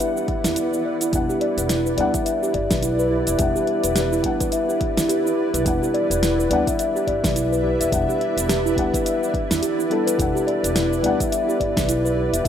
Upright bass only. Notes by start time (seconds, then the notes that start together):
0.44 E2
1.13 E1
1.57 E1
1.98 D2
2.54 G1
2.71 B1
3.27 E1
3.39 E1
3.84 E1
4.24 D2
4.97 E2
5.54 B1
5.66 E1
6.10 E1
6.51 D2
7.07 G1
7.24 B1
7.80 E1
7.92 E1
8.37 E1
8.77 D2
9.50 E2
10.19 E1
10.63 E1
11.03 D2
11.60 G1
11.77 B1
12.33 E1